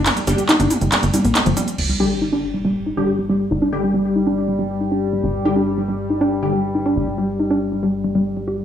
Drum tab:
CC |----------------|x---------------|----------------|----------------|
RD |x---x---x---x---|----------------|----------------|----------------|
HH |xxoxxxoxxxooxxox|----------------|----------------|----------------|
SH |xxxxxxxxxxxxxxxx|----------------|----------------|----------------|
CP |x---x---x---x---|----------------|----------------|----------------|
T2 |o-o-o-o-o-o-o-o-|----------------|----------------|----------------|

CC |----------------|
RD |----------------|
HH |----------------|
SH |----------------|
CP |----------------|
T2 |----------------|